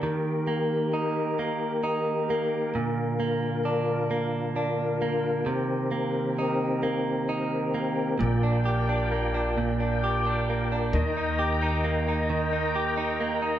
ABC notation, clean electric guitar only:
X:1
M:6/8
L:1/16
Q:3/8=44
K:Bb
V:1 name="Clean electric guitar"
E,2 B,2 E2 B,2 E2 B,2 | B,,2 B,2 D2 B,2 D2 B,2 | C,2 B,2 E2 B,2 E2 B,2 | B,, D G D B, D B,, D G D B, D |
E, E G E B, E E, E G E B, E |]